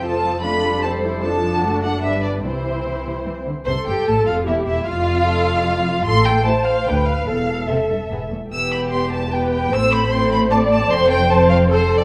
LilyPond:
<<
  \new Staff \with { instrumentName = "Violin section" } { \time 3/4 \key c \major \tempo 4 = 150 a''4 b''4 a''8 r8 | a''4. fis''8 e''8 d''8 | c''2 r4 | \key a \minor c'''8 g''8 a''8 f''8 e''8 e''8 |
f''2. | c'''8 g''8 a''8 f''8 g''8 f''8 | f''4 e''4. r8 | \key e \phrygian e'''8 b''8 c'''8 a''8 g''8 g''8 |
e'''8 b''8 c'''8 b''8 a''8 a''8 | c'''8 g''8 a''8 f''8 \tuplet 3/2 { c''4 d''8 } | }
  \new Staff \with { instrumentName = "Violin section" } { \time 3/4 \key c \major <f' a'>4 <f' a'>4 <a' c''>4 | a'4 <fis' a'>4 <d' b'>4 | <e' c''>2~ <e' c''>8 r8 | \key a \minor c''8 g'8 a'8 f'8 e'8 e'8 |
f'2. | r4 <e' a'>4 <d' a'>4 | r4 <c' a'>4 <b gis'>4 | \key e \phrygian <b g'>2 <b g'>4 |
<c' a'>4 <c' a'>4 <c' a'>4 | <c' a'>4 <c' a'>4 <c' a'>4 | }
  \new Staff \with { instrumentName = "Viola section" } { \time 3/4 \key c \major << { c'4 d'4 c'8 e'8 | d'2. | c'2~ c'8 r8 | \key a \minor a'2 g'4 |
f'4 a'4 f'4 | a'4 c''4 b'4 | a'2~ a'8 r8 | \key e \phrygian r4 g'4 b'4 |
c''2 d''4 | c''2 a'4 | } \\ { f8 f8 a8 g4. | f4 a8 a8 g4 | e2~ e8 r8 | r2. |
r2. | r2. | r2. | r2. |
r2. | r2. | } >> }
  \new Staff \with { instrumentName = "Cello section" } { \clef bass \time 3/4 \key c \major f,2.~ | f,4 fis,4 g,4 | c4 c8 c8 e8 d8 | \key a \minor c8 g,8 a,8 f,8 e,8 e,8 |
f,2. | a,4 r4 d,4 | e,4 c8 g,8 gis,8 e,8 | \key e \phrygian e,2. |
a,2. | f,2. | }
  \new Staff \with { instrumentName = "Double bass section" } { \clef bass \time 3/4 \key c \major f,,2.~ | f,,4 fis,,4 g,,4 | c,2~ c,8 r8 | \key a \minor c,8 g,,8 a,,8 f,,8 e,,8 e,,8 |
f,,2. | a,,4 r4 d,4 | e,,4 r4 e,,4 | \key e \phrygian e,,2. |
a,,2. | f,,2. | }
>>